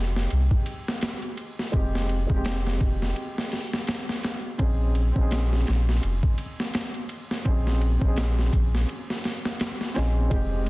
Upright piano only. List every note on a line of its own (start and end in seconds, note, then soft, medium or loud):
0.00 1.72 G#3 medium
0.00 1.73 C4 medium
0.00 1.75 D#4 medium
0.00 1.76 G4 medium
1.72 2.24 G#3 medium
1.72 2.25 C4 medium
1.72 2.26 D#4 medium
1.76 2.26 G4 medium
2.27 4.54 G#3 medium
2.27 4.56 C4 medium
2.33 4.57 D#4 medium
2.33 4.59 G4 medium
4.58 5.10 C4 medium
4.58 5.11 C#4 medium
4.58 5.12 D#4 medium
4.63 5.12 G#4 medium
5.12 7.40 C4 medium
5.12 7.41 C#4 medium
5.18 7.43 D#4 medium
5.18 7.44 G#4 medium
7.45 7.96 C4 medium
7.45 7.97 C#4 medium
7.45 7.98 D#4 medium
7.50 7.99 G#4 medium
7.98 9.91 C4 medium
7.98 9.92 C#4 medium
8.04 9.94 D#4 medium
8.04 9.95 G#4 medium
9.94 10.27 C4 medium
9.94 10.28 C#4 medium
9.94 10.28 D#4 medium
9.99 10.29 G#4 medium
10.30 10.70 G#3 medium
10.30 10.70 C4 medium
10.30 10.70 D#4 medium
10.35 10.70 G4 medium